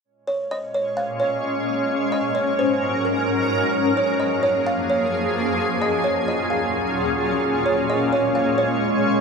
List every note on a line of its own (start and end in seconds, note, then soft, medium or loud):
0.04 1.87 A#2 medium
0.04 1.87 G#3 medium
0.04 3.70 C#4 medium
0.04 1.87 C#5 medium
0.27 0.49 C#5 medium
0.51 0.73 D#5 medium
0.74 0.96 C#5 medium
0.97 1.19 F5 medium
1.20 1.85 C#5 medium
1.89 3.72 G#2 medium
1.89 3.72 F#3 medium
1.89 3.72 A#4 medium
2.12 2.34 D#5 medium
2.35 2.57 C#5 medium
2.59 3.02 C5 medium
3.05 3.27 A#4 medium
3.73 5.56 F#2 medium
3.73 5.56 F3 medium
3.73 5.56 A#3 medium
3.73 7.39 G#4 medium
3.97 4.19 C#5 medium
4.20 4.42 D#5 medium
4.43 4.65 C#5 medium
4.67 4.88 F5 medium
4.90 5.54 C#5 medium
5.58 7.41 D#2 medium
5.58 9.21 A#2 medium
5.58 7.41 F#3 medium
5.58 7.41 C#4 medium
5.58 7.41 F4 medium
5.82 6.03 D#5 medium
6.04 6.26 C#5 medium
6.28 6.50 D#5 medium
6.50 6.94 F5 medium
7.43 9.21 G#3 medium
7.43 9.21 C#4 medium
7.43 9.21 C#5 medium
7.66 7.88 C#5 medium
7.90 8.11 D#5 medium
8.13 8.34 C#5 medium
8.35 8.57 F5 medium
8.58 9.21 C#5 medium